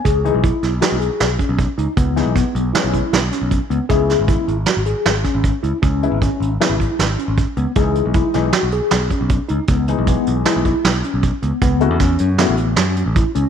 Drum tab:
HH |xxxxxxxxxx|xxxxxxxxxx|xxxxxxxxxx|xxxxxxxxxx|
SD |---oo-o---|-oo-o-oo--|-o--o-oo--|----o-o---|
BD |o-o----oo-|o-o--o--o-|o-o----oo-|o-o--o--o-|

HH |xxxxxxxxxx|xxxxxxxxxx|xxxxxxxxxx|
SD |---oo-o---|----o-o---|--o-o-o---|
BD |o-o----oo-|o-o--o--o-|o-o-----o-|